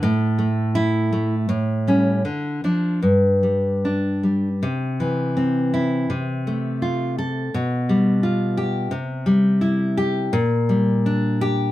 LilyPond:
\new Staff \with { instrumentName = "Nylon-string guitar" } { \clef bass \time 2/4 \key c \major \tempo 4 = 83 << { r4 e'4 | r8 cis'8 r8 d'8 | r4 d'4 | r4. e'8 |
r4. a'8 | r4. g'8 | r4. g'8 | \key g \dorian r4. g'8 | } \\ { a,8 a4 a8 | a,8 g8 d8 f8 | g,8 g4 g8 | c8 e8 c'4 |
c8 a8 f'4 | b,8 g8 f'4 | c8 g8 e'4 | bes,8 g8 d'4 | } >> }